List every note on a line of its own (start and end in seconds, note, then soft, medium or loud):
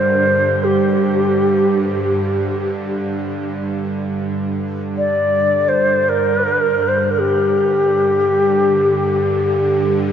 0.00 4.06 G2 medium
0.00 4.06 D3 medium
0.00 0.65 C5 medium
0.64 2.51 G4 medium
4.07 10.12 G2 medium
4.07 10.12 D3 medium
4.97 5.70 D5 medium
5.68 6.10 C5 medium
6.09 6.89 A#4 medium
6.88 7.12 C5 medium
7.11 7.20 A#4 soft
7.19 10.12 G4 medium